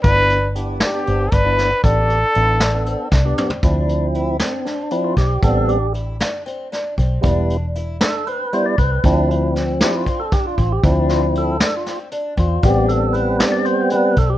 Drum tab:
HH |x-x-x-x-x-x-x-|x-x-x-x-x-----|x-x-x-x-x-x-x-|x-x-x-x-x-x-x-|
SD |------o-----o-|------o---o---|------o-o---o-|------o---o---|
T2 |--------------|------------o-|--------------|--------------|
FT |--------------|-------------o|--------------|--------------|
BD |o---------o---|o---------o---|o-----------o-|o-----------o-|

HH |x-x-x-x-x-x-x-|x-x-x-x-x-x-x-|x-x-x-x-x-x-x-|x-x-x-x-x-x-x-|
SD |------o-------|----o-o-------|--o---o-o-----|------o-------|
T2 |--------------|--------------|--------------|--------------|
FT |--------------|--------------|--------------|--------------|
BD |o-----------o-|o-------o-o-o-|o-----------o-|o-----------o-|